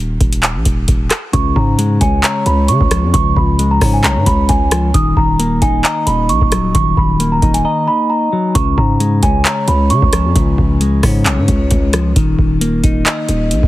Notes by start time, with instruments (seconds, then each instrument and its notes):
Already playing: 808-style bass D#1
0.21 808-style bass D#1, kick, closed hi-hat
0.33 closed hi-hat
0.43 clap, closed hi-hat
0.55 808-style bass A#1
0.65 808-style bass D#1, kick, closed hi-hat
0.88 808-style bass D#1, kick, closed hi-hat
1.10 cross-stick, clap, closed hi-hat
1.33 808-style bass C#2, clean electric guitar C#3, celesta C#6, kick, closed hi-hat
1.56 808-style bass G#2, celesta A#5, kick
1.78 clean electric guitar G#3, closed hi-hat
2.01 808-style bass C#2, clean electric guitar C#4, celesta G#5, kick, closed hi-hat
2.24 clean electric guitar C#5, celesta A#5, clap, closed hi-hat
2.46 808-style bass C#2, celesta B5, closed hi-hat
2.68 808-style bass C#3, celesta C#6, closed hi-hat
2.81 808-style bass C#2, kick
2.91 clean electric guitar F3, cross-stick, closed hi-hat
3.03 808-style bass F2
3.14 808-style bass C#2, clean electric guitar C#3, celesta C#6, kick, closed hi-hat
3.36 808-style bass C#2, celesta B5, kick
3.59 clean electric guitar G#3, closed hi-hat
3.71 celesta A#5
3.81 808-style bass G#2, clean electric guitar C#4, kick, cross-stick, open hi-hat
3.93 celesta G#5
4.04 808-style bass B1, clean electric guitar C#5, celesta A#5, clap, closed hi-hat
4.16 808-style bass G#2
4.26 808-style bass C#2, celesta B5, kick, closed hi-hat
4.49 808-style bass C#2, celesta G#5, kick, closed hi-hat
4.71 clean electric guitar F3, cross-stick, closed hi-hat
4.94 808-style bass D#1, clean electric guitar D#3, celesta D#6, kick, closed hi-hat
5.17 808-style bass D#1, celesta A#5, kick
5.39 clean electric guitar A#3, closed hi-hat
5.62 808-style bass D#1, clean electric guitar D#4, celesta G#5, kick, closed hi-hat
5.84 clean electric guitar D#5, celesta A#5, clap, closed hi-hat
6.06 808-style bass D#1, celesta B5, closed hi-hat
6.29 808-style bass A#1, celesta C#6, closed hi-hat
6.41 808-style bass D#1, kick
6.52 clean electric guitar F#3, cross-stick, closed hi-hat
6.75 808-style bass D#1, clean electric guitar D#3, celesta C#6, kick, closed hi-hat
6.97 808-style bass D#1, celesta B5, kick
7.20 clean electric guitar A#3, closed hi-hat
7.32 celesta A#5
7.42 808-style bass D#1, clean electric guitar D#4, kick, closed hi-hat
7.54 celesta G#5, closed hi-hat
7.65 clean electric guitar D#5, celesta A#5
7.88 celesta B5
8.10 celesta A#5
8.33 clean electric guitar F#3
8.55 808-style bass C#2, clean electric guitar C#3, celesta C#6, kick, closed hi-hat
8.78 808-style bass G#2, celesta A#5, kick
9.00 clean electric guitar G#3, closed hi-hat
9.23 808-style bass C#2, clean electric guitar C#4, celesta G#5, kick, closed hi-hat
9.45 clean electric guitar C#5, celesta A#5, clap, closed hi-hat
9.68 808-style bass C#2, celesta B5, closed hi-hat
9.90 808-style bass C#3, celesta C#6, closed hi-hat
10.02 808-style bass C#2, kick
10.13 clean electric guitar F3, cross-stick, closed hi-hat
10.25 808-style bass F2
10.36 808-style bass C#2, clean electric guitar C#3, kick, closed hi-hat
10.58 808-style bass C#2, kick
10.81 clean electric guitar G#3, closed hi-hat
11.03 808-style bass G#2, clean electric guitar C#4, kick, cross-stick, open hi-hat
11.26 808-style bass B1, clean electric guitar C#5, clap, closed hi-hat
11.38 808-style bass G#2
11.48 808-style bass C#2, kick, closed hi-hat
11.71 808-style bass C#2, kick, closed hi-hat
11.93 clean electric guitar F3, cross-stick, closed hi-hat
12.16 808-style bass D#1, clean electric guitar D#3, kick, closed hi-hat
12.39 808-style bass D#1, kick
12.61 clean electric guitar A#3, closed hi-hat
12.84 808-style bass D#1, clean electric guitar D#4, kick, closed hi-hat
13.06 clean electric guitar D#5, clap, closed hi-hat
13.29 808-style bass D#1, closed hi-hat
13.51 808-style bass A#1, closed hi-hat
13.63 808-style bass D#1, kick